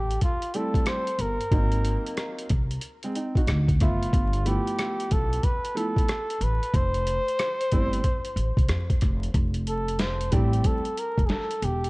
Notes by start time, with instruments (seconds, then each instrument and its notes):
Already playing: upright bass A1, flugelhorn G4
0.11 closed hi-hat
0.21 flugelhorn F4, kick, closed hi-hat
0.42 closed hi-hat
0.54 upright piano G3 A3 C4 E4, flugelhorn A4, closed hi-hat
0.74 kick, closed hi-hat
0.86 flugelhorn C5, cross-stick, closed hi-hat
1.07 closed hi-hat
1.19 upright bass G1, flugelhorn A#4, closed hi-hat
1.41 closed hi-hat
1.51 upright bass G#1, upright piano F#3 A#3 C4 D#4, kick, closed hi-hat
1.72 closed hi-hat
1.85 closed hi-hat
2.06 closed hi-hat
2.17 cross-stick, closed hi-hat
2.39 closed hi-hat
2.49 upright bass C2, kick, closed hi-hat
2.71 closed hi-hat
2.81 closed hi-hat
3.03 upright piano G#3 C4, closed hi-hat
3.15 upright piano C4 D#4, closed hi-hat
3.35 upright piano D#4 F#4, kick, closed hi-hat
3.47 upright bass D2, cross-stick, closed hi-hat
3.68 kick, closed hi-hat
3.80 upright bass F#1, upright piano F3 A3 B3 E5, flugelhorn F4, kick, cross-stick, closed hi-hat
4.02 closed hi-hat
4.13 upright bass G1, kick, closed hi-hat
4.33 closed hi-hat
4.45 upright piano F3 A3 B3 E4, flugelhorn G4, closed hi-hat
4.67 closed hi-hat
4.79 cross-stick, closed hi-hat
5.00 closed hi-hat
5.11 upright bass B1, flugelhorn A4, kick, closed hi-hat
5.33 closed hi-hat
5.43 flugelhorn B4, kick, closed hi-hat
5.65 closed hi-hat
5.75 upright piano F3 A3 B3 E4, flugelhorn A4, closed hi-hat
5.97 kick, closed hi-hat
6.08 cross-stick, closed hi-hat
6.30 closed hi-hat
6.41 upright bass A1, flugelhorn B4, closed hi-hat
6.63 closed hi-hat
6.74 upright bass F1, flugelhorn C5, kick, closed hi-hat
6.94 closed hi-hat
7.07 closed hi-hat
7.28 closed hi-hat
7.39 cross-stick, closed hi-hat
7.61 closed hi-hat
7.72 upright bass G1, upright piano G3 A3 C4 E4, kick, closed hi-hat
7.93 closed hi-hat
8.04 kick, closed hi-hat
8.25 closed hi-hat
8.36 upright bass A1, closed hi-hat
8.57 upright bass C2, kick, closed hi-hat
8.68 upright bass F2, cross-stick, closed hi-hat
8.90 kick, closed hi-hat
9.01 upright bass F1, kick, cross-stick, closed hi-hat
9.23 closed hi-hat
9.34 upright bass F1, kick, closed hi-hat
9.54 closed hi-hat
9.67 flugelhorn A4, closed hi-hat
9.88 closed hi-hat
9.99 flugelhorn C5, snare, closed hi-hat
10.21 closed hi-hat
10.32 upright bass A1, upright piano G3 A3 C4 E4, flugelhorn G4, kick, closed hi-hat
10.53 closed hi-hat
10.64 flugelhorn A4, kick, closed hi-hat
10.85 closed hi-hat
10.98 flugelhorn A#4, closed hi-hat
11.18 upright bass F1, kick, closed hi-hat
11.26 flugelhorn G#4, snare, closed hi-hat
11.31 flugelhorn A4
11.51 closed hi-hat
11.62 upright bass E1, flugelhorn G4, closed hi-hat
11.84 closed hi-hat